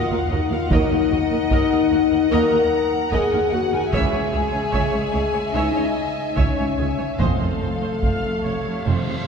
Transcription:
Already playing: french horn section F4, violin section F5 F#5
0.11 cello section D#2, viola section A#4
0.29 double bass section D#2, cello section D#2, french horn section D#4, viola section F#4 A#4, violin section D#5
0.50 cello section D#2, french horn section F4, viola section A#4, violin section F5
0.70 double bass section D#2, cello section D#2, trombone section F#3 A#3, french horn section D#4, viola section A#4 D#5, violin section D#5 F#5, taiko
0.91 cello section D#2, viola section A#4
1.10 double bass section D#2, cello section D#2, viola section F#4 A#4
1.31 cello section D#2, viola section A#4
1.50 double bass section D#2, cello section D#2, viola section A#4 D#5, taiko
1.71 cello section D#2, viola section A#4
1.90 double bass section D#2, cello section D#2, viola section F#4 A#4
2.11 cello section D#2, viola section A#4
2.30 double bass section D#2, cello section D#2, trombone section F#3 A#3, french horn section A#4, viola section A#4 D#5, violin section A#5
2.52 cello section D#2, viola section A#4
3.12 cello section D#2, double bass section D#2, french horn section G#4, viola section A#4 D#5, violin section G#5, taiko
3.33 cello section D#2, viola section A#4
3.52 double bass section D#2, cello section D#2, french horn section F#4, viola section F#4 A#4, violin section F#5
3.73 cello section D#2, french horn section G#4, viola section A#4, violin section G#5
3.92 double bass section C#2, cello section C#2, trombone section E3 C#4, french horn section G#3, violin section G#4 E5 G#5, viola section C#5 E5, taiko
4.12 cello section C#2, viola section C#5
4.32 double bass section C#2, cello section C#2, viola section G#4 C#5
4.52 cello section C#2, viola section C#5
4.72 double bass section C#2, cello section C#2, viola section C#5 E5, taiko
4.92 cello section C#2, viola section C#5
5.12 double bass section C#2, cello section C#2, viola section G#4 C#5
5.33 cello section C#2, viola section C#5
5.54 double bass section C#2, cello section C#2, trombone section E3 C#4, french horn section D#4, viola section C#5 E5, violin section D#5
5.75 cello section C#2, viola section C#5
6.36 cello section C#2, double bass section C#2, french horn section C#4, violin section C#5, viola section C#5 E5, taiko
6.57 cello section C#2, viola section C#5
6.78 double bass section C#2, cello section C#2, viola section G#4 C#5
6.99 cello section C#2, viola section C#5
7.18 double bass section F1, timpani F2, cello section F2, trombone section D#3 C4, french horn section A3, violin section A4 F5, viola section C5 D#5, taiko, cymbal swell
7.41 cello section F2, viola section C5
7.62 double bass section F1, cello section F2, viola section A4 C5
7.82 cello section F2, viola section C5
8.02 double bass section F1, cello section F2, viola section F5, taiko
8.24 cello section F2
8.45 double bass section F1, cello section F2, viola section C#5
8.66 cello section F2
8.86 double bass section F1, cello section F2, trombone section D#3 C4, viola section C5
9.07 cello section F2

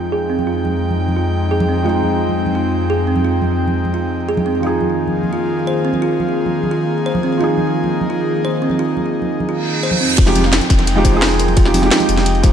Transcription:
Already playing: analog synth pad F2 G#3 C4 D#4 G5, felt piano F3 G#3 D#4 G5
0.12 kalimba G#4
0.30 kalimba C4
0.39 high conga
0.47 kalimba F4
0.65 high conga
0.91 high conga
1.08 high conga
1.16 kalimba F4
1.51 kalimba G#4
1.60 high conga
1.69 kalimba C4
1.83 felt piano F3 G#3, kalimba F4
1.87 felt piano D#4 G5
2.03 high conga
2.29 high conga
2.46 high conga
2.55 kalimba F4
2.90 kalimba G#4
3.07 kalimba C4
3.16 high conga
3.25 kalimba F4
3.42 high conga
3.68 high conga
3.85 high conga
3.94 kalimba F4
4.29 kalimba G#4
4.37 high conga
4.46 kalimba C4
4.60 analog synth pad D#3 A#3 F4 G#4, felt piano F3, kalimba F4
4.64 felt piano D#4 G#4
4.81 high conga
5.07 high conga
5.23 high conga
5.33 kalimba F4
5.67 kalimba C5
5.85 kalimba C4
5.93 high conga
6.02 kalimba F4
6.20 high conga
6.46 high conga
6.63 high conga
6.71 kalimba F4
7.06 kalimba C5
7.15 high conga
7.23 kalimba C4
7.38 felt piano F3, analog synth pad D#4, kalimba F4
7.42 felt piano D#4 G#4
7.58 high conga
7.84 high conga
8.01 high conga
8.10 kalimba F4
8.45 kalimba C5
8.62 kalimba C4
8.70 high conga
8.79 kalimba F4
8.97 high conga
9.22 high conga
9.40 high conga
9.49 kalimba F4, reverse cymbal
9.83 kalimba C5
9.91 high conga
10.01 analog synth pad F2 G#3 C4 G4, kalimba C4
10.18 sub bass F1, analog synth pad G#3 D#4 G5, kalimba F4, kick, closed hi-hat, ride, crash, downlifter
10.25 felt piano F3 G#3 D#4 G4, snare
10.35 kalimba C4, closed hi-hat, ride, tambourine, high conga
10.43 felt piano F3 G#3 D#4 F4, snare
10.53 snare, closed hi-hat, ride
10.61 closed hi-hat, tambourine, high conga
10.70 sub bass F1, kick, snare, closed hi-hat, ride, tambourine
10.79 snare, closed hi-hat, high conga
10.87 closed hi-hat, ride
10.95 felt piano F3 G#3 D#4 G4
11.05 kalimba C5, kick, closed hi-hat, ride, tambourine
11.10 felt piano F3 G#3
11.15 felt piano D#4 G#4
11.22 snare, closed hi-hat, ride
11.31 tambourine
11.39 kalimba A#4, closed hi-hat, ride, tambourine
11.48 ride, high conga
11.57 kalimba F4, kick, closed hi-hat, ride
11.64 felt piano F3 G#3 D#4 G4, snare
11.74 kalimba C4, closed hi-hat, open hi-hat, tambourine, high conga
11.80 felt piano F3 G#3, snare
11.84 felt piano D#4 G4
11.91 snare, closed hi-hat, ride
12.00 closed hi-hat, tambourine, high conga
12.09 sub bass F1, closed hi-hat, ride, tambourine
12.17 snare, closed hi-hat, high conga
12.26 closed hi-hat, ride
12.35 ride
12.42 sub bass F1, felt piano F3 G#3 D#4 G4, kalimba C5, kick, closed hi-hat, ride, tambourine

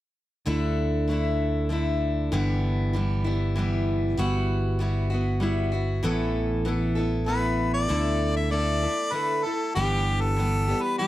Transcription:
0.45 fingered electric bass D2, steel-string acoustic guitar D3 A3 D4 E4
1.08 steel-string acoustic guitar D3 A3 D4 E4
1.69 steel-string acoustic guitar D3 A3 D4 E4
2.32 fingered electric bass G1, steel-string acoustic guitar G2 D3 E3 G3 B3 E4
2.93 steel-string acoustic guitar E3 G3 B3 E4
3.24 steel-string acoustic guitar E3 G3 B3 E4
3.56 steel-string acoustic guitar E3 G3 B3 E4
4.17 fingered electric bass G1, steel-string acoustic guitar G3 B3 E4 F#4
4.79 steel-string acoustic guitar G3 B3 E4 F#4
5.10 steel-string acoustic guitar B3 E4 F#4
5.40 steel-string acoustic guitar G3 B3 E4 F#4
5.72 steel-string acoustic guitar B3 E4 F#4
6.03 fingered electric bass A1, steel-string acoustic guitar A2 E3 B3 E4 A4
6.65 steel-string acoustic guitar E3 B3 E4 A4
6.95 steel-string acoustic guitar B3 E4 A4
7.26 steel-string acoustic guitar E3 B3 E4 A4, harmonica B4
7.74 harmonica D5
7.88 fingered electric bass D2, steel-string acoustic guitar D3 A3 E4 A4
8.36 harmonica E5
8.50 steel-string acoustic guitar D3 A3 E4 A4, harmonica D5
8.82 steel-string acoustic guitar A3 E4 A4
9.12 steel-string acoustic guitar D3 A3 E4 A4, harmonica B4
9.44 steel-string acoustic guitar A3 E4 A4, harmonica A4
9.75 fingered electric bass G1, steel-string acoustic guitar G2 D3 E3 G3 B3 G4, harmonica G4
10.21 harmonica A4
10.36 steel-string acoustic guitar E3 G3 B3 G4
10.68 steel-string acoustic guitar E3 G3 B3 G4
10.82 harmonica B4
10.98 steel-string acoustic guitar E3 G3 B3 G4, harmonica G4

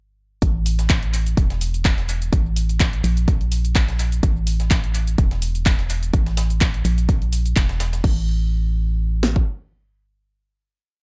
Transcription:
0.42 fm bass A1, kick, closed hi-hat, cabasa
0.66 closed hi-hat, open hi-hat, cabasa
0.79 snare, closed hi-hat, cabasa
0.90 kick, snare, clap, closed hi-hat, cabasa
1.03 closed hi-hat
1.13 closed hi-hat, open hi-hat, cabasa
1.27 closed hi-hat, cabasa
1.37 fm bass E1, kick, closed hi-hat, cabasa
1.50 snare, closed hi-hat
1.61 closed hi-hat, open hi-hat, cabasa
1.74 closed hi-hat, cabasa
1.85 kick, snare, clap, closed hi-hat, open hi-hat, cabasa
1.98 snare, closed hi-hat
2.09 closed hi-hat, open hi-hat, cabasa
2.22 closed hi-hat, cabasa
2.33 fm bass A1, kick, closed hi-hat, cabasa
2.56 closed hi-hat, open hi-hat, cabasa
2.69 closed hi-hat, cabasa
2.80 kick, snare, clap, closed hi-hat, cabasa
2.93 closed hi-hat
3.04 fm bass A#1, closed hi-hat, open hi-hat, cabasa
3.17 closed hi-hat, cabasa
3.28 kick, closed hi-hat, cabasa
3.41 closed hi-hat
3.52 closed hi-hat, open hi-hat, cabasa
3.65 closed hi-hat, cabasa
3.75 kick, snare, clap, closed hi-hat, cabasa
3.88 snare, closed hi-hat
3.99 snare, closed hi-hat, open hi-hat, cabasa
4.12 closed hi-hat, cabasa
4.23 fm bass A1, kick, closed hi-hat, cabasa
4.47 closed hi-hat, open hi-hat, cabasa
4.60 snare, closed hi-hat, cabasa
4.71 kick, snare, clap, closed hi-hat, cabasa
4.84 closed hi-hat
4.94 closed hi-hat, open hi-hat, cabasa
5.07 closed hi-hat, cabasa
5.18 fm bass E1, kick, closed hi-hat, cabasa
5.31 snare, closed hi-hat
5.42 closed hi-hat, open hi-hat, cabasa
5.55 closed hi-hat, cabasa
5.66 kick, snare, clap, closed hi-hat, open hi-hat, cabasa
5.79 snare, closed hi-hat
5.90 closed hi-hat, open hi-hat, cabasa
6.03 closed hi-hat, cabasa
6.13 fm bass A1, kick, closed hi-hat, cabasa
6.26 snare, closed hi-hat
6.37 snare, closed hi-hat, open hi-hat, cabasa
6.50 closed hi-hat, cabasa
6.61 kick, snare, clap, closed hi-hat, cabasa
6.74 closed hi-hat
6.85 fm bass A#1, closed hi-hat, open hi-hat, cabasa
6.98 closed hi-hat, cabasa
7.09 kick, closed hi-hat, cabasa
7.22 closed hi-hat
7.32 closed hi-hat, open hi-hat, cabasa
7.46 closed hi-hat, cabasa
7.56 fm bass E1, kick, snare, clap, closed hi-hat, cabasa
7.69 snare, closed hi-hat
7.80 snare, closed hi-hat, open hi-hat, cabasa
7.93 snare, closed hi-hat, cabasa
8.04 fm bass A1, kick, crash
9.23 snare
9.36 kick

